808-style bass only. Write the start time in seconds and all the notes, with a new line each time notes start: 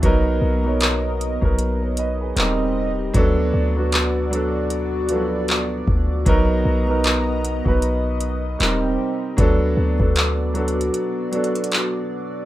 0.03 B1
0.42 B1
1.42 B1
2.36 D#1
3.15 D2
3.54 D2
5.88 D2
6.27 B1
6.65 B1
7.66 B1
8.60 D#1
9.38 D2
9.77 D2
10.00 D2